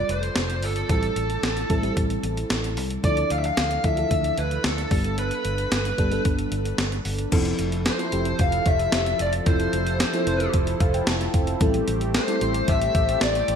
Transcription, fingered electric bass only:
0.09 F1
0.36 F1
0.63 G1
0.90 A1
1.16 A1
1.43 A1
1.70 A1
1.97 A1
2.23 A1
2.50 A1
2.77 C2
3.04 D2
3.31 D2
3.57 D2
3.84 D2
4.11 D2
4.38 D2
4.64 D2
4.91 G1
5.45 G1
5.72 G1
5.99 G1
6.25 G1
6.52 G1
6.79 G1
7.05 G1
7.32 F1
7.59 F1
8.13 F1
8.39 F1
8.66 F1
8.93 F1
9.20 F1
9.47 F1
9.73 F1
10.27 F1
10.54 F1
10.80 F1
11.07 F1
11.34 F1
11.61 A1
11.88 A1
12.41 A1
12.68 A1
12.95 A1
13.21 A1
13.48 A1

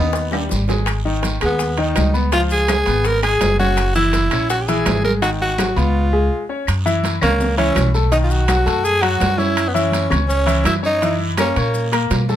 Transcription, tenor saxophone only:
Already playing: D#4
1.45 B3
1.80 D#4
2.33 F4
2.52 G#4
3.06 A#4
3.23 G#4
3.59 F#4
3.96 E4
4.50 F#4
4.61 G4
4.67 G#4
5.05 A#4
5.22 F#4
5.41 F#4
5.77 F4
7.23 A#3
7.58 C#4
8.11 D#4
8.23 F4
8.30 F#4
8.84 G#4
9.02 F#4
9.38 E4
9.68 B3
9.74 C#4
10.28 C#4
10.66 E4
10.86 D#4
11.40 C#4
11.58 A#3

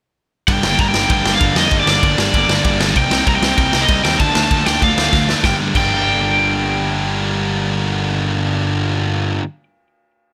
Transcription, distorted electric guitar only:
0.48 G2 D3 G3 A#3 D4
0.63 G2 D3 G3 A#3 D4
0.78 G2 D3 G3 A#3 D4
0.95 G2 D3 G3 A#3 D4
1.10 G2 D3 G3 A#3 D4
1.25 G2 D3 G3 A#3 D4
1.40 G2 D3 G3 A#3 D4
1.56 G2 D3 G3 A#3 D4
1.72 G2 D3 G3 A#3 D4
1.87 G2 D3 G3 A#3 D4
2.02 G2 D3 G3 A#3 D4
2.18 G2 D3 G3 A#3 D4
2.33 G2 D3 G3 A#3 D4
2.48 G2 D3 G3 A#3 D4
2.64 G2 D3 G3 A#3 D4
2.79 G2 D3 G3 A#3 D4
2.95 C3 G3 C4 D#4
3.11 C3 G3 C4 D#4
3.26 C3 G3 C4 D#4
3.43 C3 G3 C4 D#4
3.57 C3 G3 C4 D#4
3.73 C3 G3 C4 D#4
3.89 C3 G3 C4 D#4
4.04 C3 G3 C4 D#4
4.20 D3 F3 A3 D4
4.36 D3 F3 A3 D4
4.51 D3 F3 A3 D4
4.67 D3 F3 A3 D4
4.83 D3 F3 A3 D4
4.98 D3 F3 A3 D4
5.14 D3 F3 A3 D4
5.29 D3 F3 A3 D4
5.43 G2 D3 G3 A#3
5.47 D4
5.75 G2 D3 G3 A#3 D4

